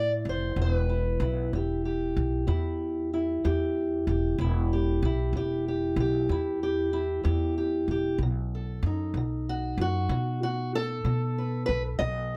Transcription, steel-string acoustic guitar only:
Already playing: A2 E4 A4 D5
0.29 C5
0.57 E2
0.61 B4
0.89 E4
1.22 E4
1.53 E2 G4
1.85 G4
2.47 E2 E4
3.14 E4
3.44 E2 G4
4.09 G4
4.39 E2 E4
4.73 G4
5.05 E4
5.36 E2 G4
5.68 G4
6.00 G4
6.30 E2 E4
6.63 G4
6.93 E4
7.24 E2 G4
7.58 G4
7.91 G4
8.23 B2
8.55 A4
8.86 D#4
9.17 B2
9.49 F#4
9.81 F#4
10.11 B2
10.43 F#4
10.75 A4
11.06 B2
11.38 B4
11.66 B4
11.99 B2 D#5

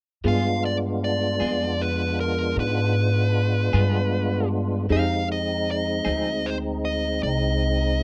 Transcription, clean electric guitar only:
0.24 G3 B3 F4 G#4
1.40 G3 B3 F4 G#4
3.73 G3 B3 F4 G#4
4.89 F3 C4 D#4 G#4
6.05 F3 C4 D#4 G#4

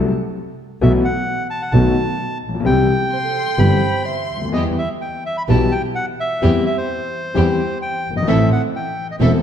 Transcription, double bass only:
0.81 B1
1.73 B1
2.42 A#1
2.65 C2
3.59 G1
4.30 D2
4.53 E2
5.49 B1
6.43 E2
7.36 E2
8.06 G1
8.27 A1
9.20 E1

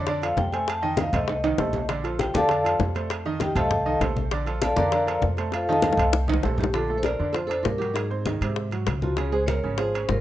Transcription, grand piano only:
0.08 D3 D4 D5
0.23 F3 F4 A4
0.53 A3 A4 C5
0.82 D#3 D#4 D#5
1.14 A3 A4 C5
1.44 D#3 D#4 D#5
1.59 A3 A4 C5
1.89 D3 D4 D5
2.04 F3 F4 A4
2.34 D3 D4 D5
2.49 D3 D4 D5
2.64 F3 F4 A4
2.95 A3 A4 C5
3.26 D#3 D#4 D#5
3.56 A3 A4 C5
3.86 D#3 D#4 D#5
4.01 A3 A4 C5
4.31 D3 D4 D5
4.46 F3 F4 A4
4.77 D3 D4 D5
4.92 D3 D4 D5
5.07 F3 F4 A4
5.38 A3 A4 C5
5.69 D#3 D#4 D#5
5.98 A3 A4 C5
6.28 D#3 D#4 D#5
6.43 A3 A4 C5
6.74 D3 D4
6.89 A3 A4
7.19 D3 D4
7.34 F3 F4
7.49 D4 D5
7.80 F#3 F#4
8.10 C4 C5
8.27 D#3 D#4
8.42 C3 C4
8.73 F#3 F#4
9.03 F3 F4
9.18 C#3 C#4
9.32 G#3 G#4
9.64 C#3 C#4
9.78 F3 F4
9.95 C#4 C#5

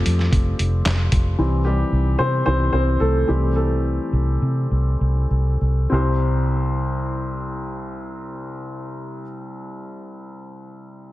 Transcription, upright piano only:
Already playing: F3 G3 A3 C4 G4
1.38 E3 G3 C4
1.65 G3 G4
2.19 C4 C5
2.46 E3 G3 C4 C5
2.73 C4 C5
3.00 A3 A4
3.28 E3 G3 A3 C4 G4
3.56 A3 A4
5.90 C2 C4 E4 G4
5.94 C5

